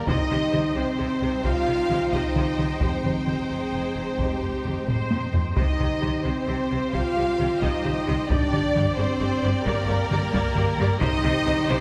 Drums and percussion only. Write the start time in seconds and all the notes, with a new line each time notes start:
0.08 taiko
0.31 taiko mid
0.54 taiko mid
1.45 taiko
1.90 taiko mid
2.12 taiko
2.35 taiko mid
2.58 taiko mid
2.81 taiko
3.04 taiko mid
3.27 taiko mid
4.19 taiko
4.65 taiko mid
4.88 taiko low-mid
5.11 taiko high
5.33 taiko low
5.57 taiko
5.80 taiko mid
6.02 taiko mid
6.94 taiko
7.39 taiko mid
7.62 taiko
7.85 taiko mid
8.08 taiko mid
8.30 taiko
8.54 taiko mid
8.76 taiko mid
9.66 taiko
10.11 taiko mid
10.33 taiko
10.55 taiko mid
10.79 taiko mid
11.01 taiko
11.24 taiko mid
11.47 taiko mid